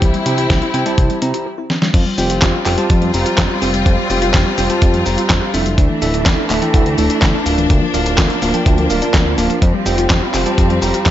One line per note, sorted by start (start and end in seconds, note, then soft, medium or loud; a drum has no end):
0.00 0.13 C2 loud
0.00 0.11 E3 medium
0.00 1.43 G3 medium
0.00 1.45 C4 medium
0.00 0.23 E4 medium
0.00 1.45 E4 medium
0.00 0.23 G4 medium
0.00 0.23 C5 medium
0.00 0.23 G5 medium
0.00 kick loud
0.00 closed hi-hat medium
0.14 0.20 G3 medium
0.14 closed hi-hat soft
0.26 0.47 C3 loud
0.26 0.35 C4 medium
0.26 0.71 E4 medium
0.26 0.71 G4 medium
0.26 0.71 C5 medium
0.26 0.71 G5 loud
0.26 closed hi-hat medium
0.38 0.44 E4 medium
0.38 closed hi-hat medium
0.50 0.61 C2 medium
0.50 0.59 G4 medium
0.50 kick loud
0.50 snare loud
0.50 closed hi-hat medium
0.62 0.71 E4 medium
0.62 closed hi-hat soft
0.74 0.85 C3 medium
0.74 0.85 C4 medium
0.74 0.83 E4 medium
0.74 0.83 G4 medium
0.74 0.83 C5 medium
0.74 0.83 G5 loud
0.74 closed hi-hat medium
0.86 0.97 G3 medium
0.86 1.19 E4 medium
0.86 1.19 G4 medium
0.86 1.19 C5 medium
0.86 1.19 A5 loud
0.86 closed hi-hat soft
0.98 1.09 C2 medium
0.98 1.07 E3 medium
0.98 kick loud
0.98 closed hi-hat medium
1.10 1.16 G3 medium
1.10 closed hi-hat soft
1.22 1.33 C3 medium
1.22 1.31 C4 medium
1.22 1.46 E4 medium
1.22 1.46 G4 medium
1.22 1.46 C5 medium
1.22 1.46 A#5 medium
1.22 closed hi-hat medium
1.34 1.40 E4 medium
1.34 closed hi-hat medium
1.46 1.55 G4 medium
1.58 1.67 E4 medium
1.70 1.81 C4 medium
1.70 snare medium
1.82 1.93 G3 medium
1.82 snare medium
1.94 2.05 F2 loud
1.94 2.05 F3 medium
1.94 5.74 G3 medium
1.94 5.74 C4 medium
1.94 5.74 F4 medium
1.94 kick loud
1.94 closed hi-hat medium
1.94 crash loud
1.94 cabasa soft
2.06 2.15 G3 medium
2.18 2.39 F1 loud
2.18 2.29 C4 medium
2.18 2.63 F4 medium
2.18 2.63 G4 medium
2.18 2.63 C5 medium
2.18 2.63 G5 loud
2.18 open hi-hat loud
2.18 cabasa medium
2.30 2.36 F4 medium
2.30 closed hi-hat medium
2.30 cabasa soft
2.42 2.53 F2 medium
2.42 2.53 G4 medium
2.42 kick loud
2.42 snare loud
2.42 clap medium
2.42 closed hi-hat medium
2.42 cabasa soft
2.54 2.63 F4 medium
2.66 2.77 F1 loud
2.66 2.77 C4 medium
2.66 2.75 F4 medium
2.66 2.75 G4 medium
2.66 2.75 C5 medium
2.66 2.75 G5 loud
2.66 clap medium
2.66 open hi-hat loud
2.66 cabasa medium
2.78 2.84 G3 medium
2.78 3.11 F4 medium
2.78 3.11 G4 medium
2.78 3.11 C5 medium
2.78 3.11 A5 loud
2.78 closed hi-hat soft
2.78 cabasa soft
2.90 3.11 F2 medium
2.90 3.01 F3 medium
2.90 kick loud
2.90 closed hi-hat medium
2.90 cabasa soft
3.02 3.11 G3 medium
3.02 closed hi-hat soft
3.14 3.25 F1 medium
3.14 3.25 C4 medium
3.14 3.59 F4 medium
3.14 3.59 G4 medium
3.14 3.59 C5 medium
3.14 3.59 A#5 medium
3.14 open hi-hat loud
3.14 cabasa medium
3.26 3.32 F4 medium
3.26 closed hi-hat medium
3.26 cabasa soft
3.38 3.49 F2 loud
3.38 3.49 G4 medium
3.38 kick loud
3.38 snare loud
3.38 clap medium
3.38 closed hi-hat medium
3.38 cabasa soft
3.50 3.59 F4 medium
3.62 3.83 F1 medium
3.62 3.73 C4 medium
3.62 4.07 F4 medium
3.62 4.07 G4 medium
3.62 4.07 C5 medium
3.62 4.07 G5 medium
3.62 open hi-hat loud
3.62 cabasa medium
3.74 3.80 G3 medium
3.74 closed hi-hat medium
3.74 cabasa soft
3.86 3.97 F2 loud
3.86 3.97 F3 medium
3.86 kick loud
3.86 closed hi-hat medium
3.86 cabasa soft
3.98 4.07 G3 medium
4.10 4.31 F1 loud
4.10 4.21 C4 medium
4.10 4.55 F4 medium
4.10 4.55 G4 medium
4.10 4.55 C5 medium
4.10 4.55 G5 loud
4.10 open hi-hat loud
4.10 cabasa medium
4.22 4.28 F4 medium
4.22 closed hi-hat medium
4.22 cabasa soft
4.34 4.45 F2 medium
4.34 4.45 G4 medium
4.34 kick loud
4.34 snare loud
4.34 clap medium
4.34 closed hi-hat medium
4.34 cabasa soft
4.46 4.55 F4 medium
4.58 4.69 F1 medium
4.58 4.69 C4 medium
4.58 4.67 F4 loud
4.58 4.67 G4 medium
4.58 4.67 C5 medium
4.58 4.67 G5 loud
4.58 open hi-hat loud
4.58 cabasa medium
4.70 4.76 G3 medium
4.70 5.03 F4 medium
4.70 5.03 G4 medium
4.70 5.03 C5 medium
4.70 5.03 A5 loud
4.70 closed hi-hat soft
4.70 cabasa soft
4.82 5.03 F2 medium
4.82 4.93 F3 medium
4.82 kick loud
4.82 closed hi-hat medium
4.82 cabasa soft
4.94 5.03 G3 medium
4.94 closed hi-hat soft
5.06 5.17 F1 medium
5.06 5.17 C4 medium
5.06 5.51 F4 medium
5.06 5.51 G4 medium
5.06 5.51 C5 medium
5.06 5.51 A#5 medium
5.06 open hi-hat loud
5.06 cabasa medium
5.18 5.24 F4 medium
5.18 closed hi-hat soft
5.18 cabasa soft
5.30 5.41 F2 medium
5.30 5.41 G4 medium
5.30 kick loud
5.30 snare loud
5.30 clap loud
5.30 closed hi-hat medium
5.30 cabasa soft
5.42 5.51 F4 medium
5.54 5.76 F1 medium
5.54 5.65 C4 medium
5.54 5.99 D4 medium
5.54 5.99 E4 medium
5.54 5.99 A4 medium
5.54 5.99 E5 medium
5.54 open hi-hat loud
5.54 cabasa medium
5.66 5.72 G3 medium
5.66 closed hi-hat medium
5.66 cabasa soft
5.78 5.89 D2 loud
5.78 5.89 D3 medium
5.78 7.68 E3 medium
5.78 7.68 A3 medium
5.78 9.58 D4 medium
5.78 kick loud
5.78 closed hi-hat medium
5.78 cabasa soft
5.90 5.99 E3 medium
6.02 6.23 D1 loud
6.02 6.13 A3 medium
6.02 6.47 D4 medium
6.02 6.47 E4 medium
6.02 6.47 A4 medium
6.02 6.47 E5 loud
6.02 open hi-hat loud
6.02 cabasa medium
6.14 6.20 D4 medium
6.14 closed hi-hat medium
6.14 cabasa soft
6.26 6.37 D2 medium
6.26 6.37 E4 medium
6.26 kick loud
6.26 snare loud
6.26 clap medium
6.26 closed hi-hat medium
6.26 cabasa soft
6.38 6.47 D4 medium
6.50 6.61 D1 medium
6.50 6.61 A3 medium
6.50 6.59 D4 medium
6.50 6.59 E4 medium
6.50 6.59 A4 medium
6.50 6.59 E5 loud
6.50 clap medium
6.50 open hi-hat loud
6.50 cabasa medium
6.62 6.68 E3 medium
6.62 6.95 D4 medium
6.62 6.95 E4 medium
6.62 6.95 A4 medium
6.62 6.95 G5 loud
6.62 closed hi-hat soft
6.62 cabasa soft
6.74 6.95 D2 medium
6.74 6.85 D3 medium
6.74 kick loud
6.74 closed hi-hat medium
6.74 cabasa soft
6.86 6.95 E3 medium
6.86 closed hi-hat soft
6.98 7.09 D1 medium
6.98 7.09 A3 medium
6.98 7.43 D4 medium
6.98 7.43 E4 medium
6.98 7.43 A4 medium
6.98 7.43 A5 medium
6.98 open hi-hat medium
6.98 cabasa medium
7.10 7.16 D4 medium
7.10 closed hi-hat medium
7.10 cabasa soft
7.22 7.33 D2 loud
7.22 7.33 E4 medium
7.22 kick loud
7.22 snare loud
7.22 clap medium
7.22 closed hi-hat medium
7.22 cabasa soft
7.34 7.43 D4 medium
7.46 7.67 D1 medium
7.46 7.57 A3 medium
7.46 7.91 D4 medium
7.46 7.91 F4 medium
7.46 7.91 A#4 medium
7.46 7.91 F5 medium
7.46 open hi-hat loud
7.46 cabasa medium
7.58 7.64 E3 medium
7.58 closed hi-hat soft
7.58 cabasa soft
7.70 7.81 D2 loud
7.70 7.81 D3 medium
7.70 11.11 F3 medium
7.70 9.60 A#3 medium
7.70 kick loud
7.70 closed hi-hat medium
7.70 cabasa soft
7.82 7.91 F3 medium
7.94 8.15 D1 loud
7.94 8.05 A#3 medium
7.94 8.39 D4 medium
7.94 8.39 F4 medium
7.94 8.39 A#4 medium
7.94 8.39 F5 loud
7.94 open hi-hat loud
7.94 cabasa medium
8.06 8.12 D4 medium
8.06 closed hi-hat medium
8.06 cabasa soft
8.18 8.29 D2 medium
8.18 8.29 F4 medium
8.18 kick loud
8.18 snare loud
8.18 clap medium
8.18 closed hi-hat medium
8.18 cabasa soft
8.30 8.39 D4 medium
8.30 closed hi-hat soft
8.42 8.53 D1 medium
8.42 8.53 A#3 medium
8.42 8.51 D4 medium
8.42 8.51 F4 medium
8.42 8.51 A#4 medium
8.42 8.51 F5 loud
8.42 open hi-hat loud
8.42 cabasa medium
8.54 8.60 F3 medium
8.54 8.87 D4 medium
8.54 8.87 F4 medium
8.54 8.87 A#4 medium
8.54 8.87 G5 loud
8.54 closed hi-hat soft
8.54 cabasa soft
8.66 8.88 D2 medium
8.66 8.77 D3 medium
8.66 kick loud
8.66 closed hi-hat medium
8.66 cabasa soft
8.78 8.87 F3 medium
8.78 closed hi-hat soft
8.90 9.01 D1 medium
8.90 9.01 A#3 medium
8.90 8.99 D4 loud
8.90 8.99 F4 medium
8.90 8.99 A#4 medium
8.90 8.99 F5 loud
8.90 open hi-hat loud
8.90 cabasa medium
9.02 9.35 D4 medium
9.02 9.08 D4 medium
9.02 9.35 F4 medium
9.02 9.35 A#4 medium
9.02 9.35 D5 loud
9.02 closed hi-hat medium
9.02 cabasa soft
9.14 9.35 D2 medium
9.14 9.25 F4 medium
9.14 kick loud
9.14 snare loud
9.14 clap medium
9.14 closed hi-hat medium
9.14 cabasa soft
9.26 9.35 D4 medium
9.38 9.49 D1 medium
9.38 9.49 A#3 medium
9.38 9.59 D4 loud
9.38 9.59 F4 medium
9.38 9.59 A#4 medium
9.38 9.59 F5 loud
9.38 open hi-hat loud
9.38 cabasa medium
9.50 9.56 F3 medium
9.50 closed hi-hat soft
9.50 cabasa soft
9.62 9.73 F2 loud
9.62 9.73 F3 medium
9.62 11.11 G3 medium
9.62 11.11 C4 medium
9.62 kick loud
9.62 closed hi-hat medium
9.62 cabasa soft
9.74 9.83 G3 medium
9.86 10.07 F1 loud
9.86 9.97 C4 medium
9.86 10.31 F4 medium
9.86 10.31 G4 medium
9.86 10.31 C5 medium
9.86 10.31 G5 loud
9.86 open hi-hat loud
9.86 cabasa medium
9.98 10.04 F4 medium
9.98 closed hi-hat medium
9.98 cabasa soft
10.10 10.21 F2 medium
10.10 10.21 G4 medium
10.10 kick loud
10.10 snare loud
10.10 clap medium
10.10 closed hi-hat medium
10.10 cabasa soft
10.22 10.31 F4 medium
10.34 10.45 F1 medium
10.34 10.45 C4 medium
10.34 10.43 F4 medium
10.34 10.43 G4 medium
10.34 10.43 C5 medium
10.34 10.43 G5 loud
10.34 clap medium
10.34 open hi-hat loud
10.34 cabasa medium
10.46 10.52 G3 medium
10.46 10.79 F4 medium
10.46 10.79 G4 medium
10.46 10.79 C5 medium
10.46 10.79 A5 loud
10.46 closed hi-hat soft
10.46 cabasa soft
10.58 10.79 F2 medium
10.58 10.69 F3 medium
10.58 kick loud
10.58 closed hi-hat medium
10.58 cabasa soft
10.70 10.79 G3 medium
10.70 closed hi-hat soft
10.82 10.93 F1 medium
10.82 10.93 C4 medium
10.82 11.11 F4 medium
10.82 11.11 G4 medium
10.82 11.11 C5 medium
10.82 11.11 A#5 medium
10.82 open hi-hat loud
10.82 cabasa medium
10.94 11.00 F4 medium
10.94 closed hi-hat medium
10.94 cabasa soft
11.06 11.11 F2 medium
11.06 11.11 G4 medium
11.06 kick loud
11.06 snare loud
11.06 clap medium
11.06 closed hi-hat medium